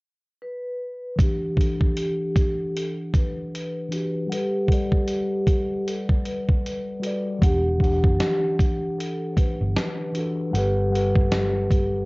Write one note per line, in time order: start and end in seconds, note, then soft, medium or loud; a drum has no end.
0.42 1.22 B4 medium
1.16 1.54 E3 medium
1.16 1.55 D4 medium
1.16 1.96 G4 medium
1.16 kick loud
1.16 closed hi-hat medium
1.21 1.57 G4 medium
1.21 1.56 F#5 medium
1.55 3.01 E3 medium
1.55 3.03 D4 medium
1.55 kick medium
1.60 3.05 A4 medium
1.60 3.04 F#5 medium
1.60 closed hi-hat medium
1.81 kick medium
1.97 2.77 G4 medium
1.97 closed hi-hat medium
2.36 kick loud
2.36 closed hi-hat medium
2.75 2.93 A4 medium
2.75 closed hi-hat medium
3.14 3.50 B4 medium
3.14 kick medium
3.14 closed hi-hat soft
3.53 4.27 B4 medium
3.53 closed hi-hat medium
3.88 4.26 E3 medium
3.88 4.27 D4 medium
3.88 closed hi-hat medium
3.93 4.28 F#4 medium
3.93 4.30 G4 medium
4.27 4.65 G3 medium
4.27 4.66 F#5 medium
4.31 5.08 G4 medium
4.31 4.67 A4 medium
4.31 4.68 B4 medium
4.31 closed hi-hat medium
4.67 6.13 G3 medium
4.67 6.14 F#5 medium
4.67 kick medium
4.71 6.15 A4 medium
4.71 6.17 D5 medium
4.71 closed hi-hat medium
4.92 kick medium
5.08 5.83 G4 medium
5.08 closed hi-hat medium
5.47 kick medium
5.47 closed hi-hat medium
5.87 6.04 A4 medium
5.87 closed hi-hat medium
6.09 kick medium
6.26 6.62 B4 medium
6.26 closed hi-hat medium
6.49 kick medium
6.65 7.38 B4 medium
6.65 closed hi-hat medium
7.00 7.38 G3 medium
7.00 7.39 F#4 medium
7.00 closed hi-hat medium
7.04 7.40 A4 medium
7.04 7.41 D5 medium
7.39 8.02 E1 loud
7.39 7.76 E3 medium
7.39 7.78 D4 medium
7.39 8.19 G4 medium
7.39 kick loud
7.43 7.81 G4 medium
7.43 7.79 F#5 medium
7.43 closed hi-hat medium
7.78 9.25 E3 medium
7.78 9.26 D4 medium
7.78 kick medium
7.83 9.28 G4 medium
7.83 9.27 F#5 medium
7.83 closed hi-hat medium
8.04 8.19 F#1 medium
8.04 kick medium
8.20 8.94 G4 medium
8.20 snare medium
8.20 closed hi-hat medium
8.59 kick medium
8.59 closed hi-hat medium
8.98 9.33 A4 medium
8.98 closed hi-hat medium
9.32 9.37 C5 medium
9.37 9.55 B4 medium
9.37 kick medium
9.37 closed hi-hat medium
9.61 9.75 G1 medium
9.76 10.50 B4 medium
9.76 snare medium
9.76 closed hi-hat medium
10.12 10.50 E3 medium
10.12 10.51 D4 medium
10.12 closed hi-hat medium
10.17 10.52 F#4 medium
10.17 10.53 A4 medium
10.51 12.05 G1 medium
10.51 10.89 G3 medium
10.51 11.31 G4 medium
10.51 10.90 F#5 medium
10.51 closed hi-hat medium
10.56 10.91 A4 medium
10.56 10.92 B4 medium
10.90 12.05 G3 medium
10.90 12.05 F#5 medium
10.95 12.05 A4 medium
10.95 12.05 B4 medium
10.95 closed hi-hat medium
11.16 kick medium
11.32 12.05 G4 medium
11.32 snare medium
11.32 closed hi-hat medium
11.71 kick medium
11.71 closed hi-hat medium